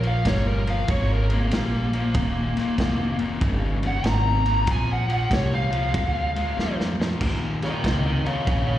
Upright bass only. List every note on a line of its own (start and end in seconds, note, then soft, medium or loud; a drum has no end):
0.00 0.24 A#1 medium
0.25 0.87 G1 loud
0.89 1.50 G#1 medium
1.51 2.13 A#1 medium
2.15 2.54 D#1 medium
2.57 muted upright bass stroke soft
2.78 3.40 F1 medium
3.41 4.03 G1 medium
4.04 4.66 G#1 loud
4.68 5.29 A#1 medium
5.31 5.92 C2 loud
5.94 6.55 D2 medium
6.58 7.19 F2 medium
7.21 7.82 D#2 medium
7.84 8.22 C#2 loud
8.26 muted upright bass stroke soft
8.48 8.79 A#1 medium